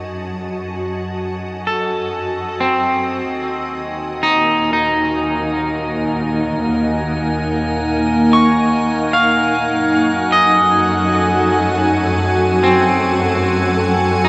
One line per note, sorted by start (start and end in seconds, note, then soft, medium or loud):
0.00 3.26 F#2 medium
0.00 5.88 F#4 medium
0.00 11.38 D#5 medium
0.00 4.40 G#5 medium
0.00 3.29 A5 medium
1.67 5.27 A4 medium
2.60 4.40 C4 medium
3.29 9.71 D#2 medium
3.29 11.67 D#4 medium
3.29 14.29 G#5 medium
3.60 9.74 A#3 medium
4.23 4.72 D#4 medium
4.73 8.30 D#4 medium
5.04 14.29 F#5 medium
8.33 9.30 C#6 medium
9.13 10.49 F5 medium
9.73 14.29 F#2 medium
9.73 14.29 F#4 medium
10.08 14.29 A4 medium
10.32 13.87 D#5 medium
10.47 14.29 G#5 medium
12.64 14.29 C4 medium
14.25 14.29 D#4 medium